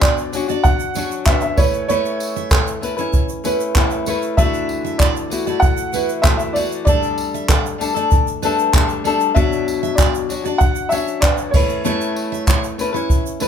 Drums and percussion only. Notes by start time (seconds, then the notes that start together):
0.02 kick, clap, shaker
0.18 shaker
0.33 tambourine, shaker
0.49 shaker
0.64 kick, shaker
0.80 shaker
0.94 tambourine, shaker
1.11 shaker
1.26 kick, clap, shaker
1.41 shaker
1.57 kick, tambourine
1.73 shaker
1.90 shaker
2.05 shaker
2.20 tambourine, shaker
2.37 shaker
2.51 kick, clap, shaker
2.67 shaker
2.83 tambourine, shaker
2.98 shaker
3.13 kick, shaker
3.29 shaker
3.44 tambourine, shaker
3.60 shaker
3.75 kick, clap, shaker
3.90 shaker
4.06 tambourine, shaker
4.22 shaker
4.38 kick, shaker
4.54 shaker
4.69 tambourine
4.86 shaker
5.00 kick, clap, shaker
5.16 shaker
5.31 tambourine, shaker
5.47 shaker
5.62 kick, shaker
5.77 shaker
5.93 tambourine, shaker
6.09 shaker
6.24 kick, clap, shaker
6.40 shaker
6.56 tambourine
6.72 shaker
6.87 kick, shaker
7.03 shaker
7.18 tambourine
7.35 shaker
7.49 kick, clap, shaker
7.66 shaker
7.81 tambourine, shaker
7.96 shaker
8.11 kick, shaker
8.27 shaker
8.43 tambourine, shaker
8.59 shaker
8.74 kick, clap, shaker
8.89 shaker
9.05 tambourine
9.20 shaker
9.36 kick, shaker
9.53 shaker
9.68 tambourine
9.84 shaker
9.98 kick, clap, shaker
10.15 shaker
10.30 tambourine, shaker
10.45 shaker
10.60 kick, shaker
10.76 shaker
10.91 tambourine, shaker
11.08 shaker
11.22 kick, clap, shaker
11.38 shaker
11.54 kick, tambourine, crash
11.69 shaker
11.85 shaker
12.01 shaker
12.16 tambourine
12.34 shaker
12.47 kick, clap, shaker
12.64 shaker
12.79 tambourine, shaker
12.95 shaker
13.10 kick, shaker
13.26 shaker
13.40 tambourine, shaker